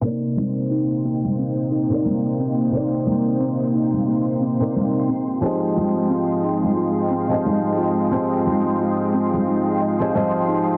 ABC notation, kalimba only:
X:1
M:4/4
L:1/16
Q:"Swing 16ths" 1/4=89
K:Cm
V:1 name="Kalimba"
B, z C2 E2 B, z C2 E2 B, z C2 | E2 B, z C2 E2 B, z C2 E2 C z | E2 F2 C z E2 F2 C z E2 F2 | C z E2 F2 C z E2 e2 c z E z |]